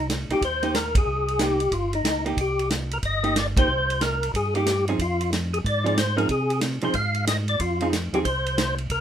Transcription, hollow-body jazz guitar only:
0.31 0.41 A#3 soft
0.31 0.41 D#4 medium
0.31 0.41 G4 medium
0.63 0.73 A#3 medium
0.63 0.73 D#4 medium
0.63 0.74 G4 medium
1.41 1.59 A#3 medium
1.41 1.59 D#4 medium
1.41 1.59 G4 medium
2.26 2.36 A#3 medium
2.26 2.37 D#4 medium
2.26 2.37 G4 medium
3.24 3.34 A#3 medium
3.24 3.35 D#4 medium
3.24 3.35 G4 medium
3.57 3.67 A#3 medium
3.57 3.68 D#4 medium
3.57 3.68 G4 medium
4.55 4.65 A#3 medium
4.55 4.66 D#4 medium
4.55 4.66 G4 medium
4.89 4.98 F3 medium
4.89 4.99 C4 medium
4.89 4.98 D#4 medium
4.89 4.99 G#4 medium
5.84 5.95 F3 medium
5.84 5.96 C4 medium
5.84 5.96 D#4 medium
5.84 5.96 G#4 medium
6.17 6.28 F3 medium
6.17 6.28 C4 medium
6.17 6.28 D#4 medium
6.17 6.28 G#4 medium
6.83 6.93 F3 medium
6.83 6.93 C4 medium
6.83 6.93 D#4 medium
6.83 6.94 G#4 medium
7.82 7.92 F3 medium
7.82 7.92 C4 medium
7.82 7.92 D#4 medium
7.82 7.92 G#4 medium
8.14 8.24 F3 medium
8.14 8.24 C4 medium
8.14 8.24 D#4 medium
8.14 8.25 G#4 medium

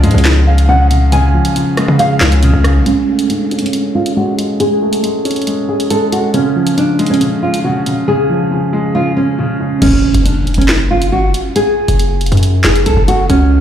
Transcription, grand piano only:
0.00 0.25 C#3 medium
0.00 0.69 F3 medium
0.00 1.12 G#3 loud
0.25 0.67 C#3 medium
0.69 0.89 C#3 medium
0.91 1.11 C#3 medium
1.12 1.54 C#3 medium
1.34 2.43 F3 medium
1.55 1.98 C#3 medium
1.77 2.84 G#3 medium
1.99 2.41 C#3 medium
2.43 2.63 C#3 medium
2.65 2.86 C#3 medium
2.86 3.29 G#3 medium
3.08 4.17 A3 medium
3.30 3.72 G#3 medium
3.52 4.60 C#4 medium
3.73 4.15 G#3 medium
4.16 4.36 G#3 medium
4.38 4.59 G#3 medium
4.61 5.02 G#3 medium
4.82 5.91 A3 medium
5.03 5.46 G#3 medium
5.25 6.34 C#4 medium
5.47 5.89 G#3 medium
5.90 6.11 G#3 medium
6.12 6.34 G#3 medium
6.34 7.19 C#3 medium
6.56 7.64 F3 medium
6.99 8.08 G#3 loud
7.21 7.63 C#3 medium
7.64 7.85 C#3 medium
7.86 8.06 C#3 medium
8.08 8.49 C#3 medium
8.30 9.38 F3 medium
8.51 8.93 C#3 medium
8.73 9.82 G#3 medium
8.95 9.37 C#3 medium
9.39 9.59 C#3 medium
9.60 9.82 C#3 medium

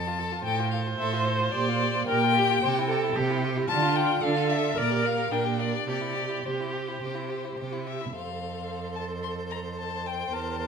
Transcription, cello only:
0.00 0.38 F2 medium
0.44 0.92 A2 medium
0.99 1.46 A2 medium
1.52 2.01 A#2 medium
2.07 2.55 A#2 medium
2.62 3.09 C3 medium
3.15 3.63 C3 medium
3.70 4.17 D3 medium
4.23 4.70 D3 medium
4.77 5.25 A#2 medium
5.32 5.81 A#2 medium
5.87 6.38 C3 medium
6.45 6.95 C3 medium
7.02 7.52 C3 medium
7.59 8.09 C3 medium
8.15 10.29 F2 soft
10.33 10.67 E2 medium

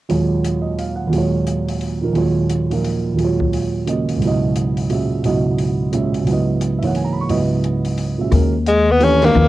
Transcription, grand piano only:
0.09 1.06 D#2 soft
0.09 1.08 A#2 soft
0.09 1.10 F#3 soft
0.09 1.12 G#3 soft
0.09 1.12 F4 soft
0.09 1.13 C#5 soft
0.62 0.85 D#5 soft
0.79 1.04 F5 soft
0.96 1.19 F#5 soft
1.07 2.12 D#2 soft
1.07 2.00 A#2 soft
1.12 2.14 F#3 soft
1.12 2.14 G#3 soft
1.16 2.16 F4 soft
1.16 2.17 C#5 medium
2.01 2.13 A#2 soft
2.01 2.15 F3 soft
2.01 2.16 D#4 soft
2.01 2.16 A#4 soft
2.13 3.12 D#2 soft
2.13 2.69 A#2 soft
2.13 3.16 F#3 soft
2.13 3.18 G#3 soft
2.13 3.19 F4 soft
2.18 3.20 C#5 medium
2.70 3.14 A#2 soft
2.70 3.18 F3 soft
2.70 3.19 D#4 soft
2.70 3.19 A#4 soft
3.14 4.19 D#2 soft
3.14 4.20 A#2 soft
3.18 4.20 F#3 soft
3.18 3.86 G#3 soft
3.22 4.23 F4 soft
3.22 4.24 C#5 soft
3.86 4.21 C#3 soft
3.86 4.21 G#3 soft
3.86 4.22 A#3 soft
3.86 4.22 F#4 soft
3.86 4.22 D#5 soft
4.16 5.22 C#2 soft
4.16 5.23 G#2 soft
4.21 5.24 B2 soft
4.21 5.23 F#3 soft
4.25 5.24 E4 soft
4.25 5.24 D#5 medium
4.89 5.24 A#2 soft
4.89 5.24 G#3 soft
4.89 5.25 C#4 soft
4.89 5.25 F#4 soft
4.89 5.25 E5 soft
5.24 6.21 C#2 soft
5.24 6.23 G#2 soft
5.24 6.27 B2 soft
5.24 6.25 F#3 soft
5.24 6.27 E4 soft
5.24 6.28 D#5 medium
5.92 6.26 A#2 soft
5.92 6.27 G#3 soft
5.92 6.27 C#4 soft
5.92 6.28 F#4 soft
5.92 6.28 E5 soft
6.22 7.27 C#2 soft
6.22 6.80 G#2 soft
6.27 7.28 F#3 soft
6.27 7.28 B3 soft
6.31 7.28 E4 soft
6.31 7.29 D#5 soft
6.79 7.28 G#2 soft
6.79 7.30 E3 soft
6.79 6.89 E5 soft
6.83 7.30 A#3 soft
6.83 7.30 D#4 soft
6.83 7.31 C#5 soft
6.83 6.99 F#5 soft
6.96 7.11 G#5 soft
7.04 7.18 A#5 soft
7.13 7.24 B5 soft
7.21 7.33 C#6 soft
7.29 8.32 C#2 soft
7.29 8.32 G#2 soft
7.29 8.32 F#3 soft
7.29 8.33 B3 soft
7.29 8.33 E4 soft
7.29 8.33 D#5 medium
8.18 8.32 A#2 soft
8.18 8.30 G#3 soft
8.18 8.30 C#4 soft
8.18 8.30 F#4 soft
8.18 8.33 E5 soft
8.31 8.51 D#3 soft
8.31 8.51 G#3 soft
8.31 8.51 C#4 soft
8.31 8.52 F#4 soft
8.31 8.52 A#4 medium
9.00 9.20 E3 medium
9.00 9.20 A3 soft
9.00 9.20 D4 soft
9.00 9.20 G4 soft
9.00 9.21 B4 medium
9.22 9.48 D#3 medium
9.22 9.48 G#3 soft
9.22 9.48 C#4 soft
9.22 9.48 F#4 medium
9.22 9.48 A#4 medium
9.35 9.48 F3 medium
9.35 9.48 A#3 medium
9.35 9.48 D#4 soft
9.35 9.48 G#4 medium
9.35 9.48 B4 medium

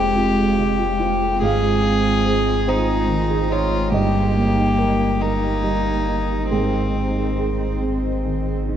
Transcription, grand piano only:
0.00 1.38 F2 medium
0.00 0.41 G#3 soft
0.00 0.16 C4 soft
0.00 1.36 D#5 medium
0.16 0.83 C4 soft
0.59 1.25 C3 soft
0.99 1.41 F4 soft
1.42 3.89 G#2 medium
1.42 2.64 F5 medium
1.82 2.50 C4 soft
2.25 2.92 G#4 soft
2.66 3.34 C4 soft
2.66 3.47 C5 medium
3.08 3.76 D#3 soft
3.49 3.92 D#4 medium
3.49 3.91 C#5 medium
3.92 6.46 G2 medium
3.92 5.18 D#5 medium
4.35 5.04 A#3 soft
4.78 5.21 A#4 medium
5.22 5.90 A#3 soft
5.22 6.47 A#4 medium
5.64 6.33 G3 soft
6.08 6.51 D#4 soft
6.52 8.77 G#2 soft
6.52 7.38 G#4 medium
6.96 7.64 C4 soft
7.39 8.08 G#4 soft
7.81 8.51 C4 soft
8.24 8.77 D#3 soft
8.68 8.77 D#4 soft

